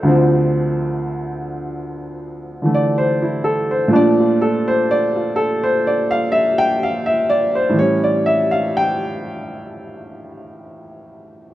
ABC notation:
X:1
M:4/4
L:1/16
Q:"Swing" 1/4=62
K:Dm
V:1 name="Upright piano"
A8 z3 d c E A c | d F A c d F A c d f e g f e d c | ^c d e f g2 z8 z2 |]
V:2 name="Upright piano" clef=bass
[D,,D,F,C]8- [D,,D,F,C]2 [D,E,A,]6 | [B,,F,A,D]16 | [A,,E,G,^C]16 |]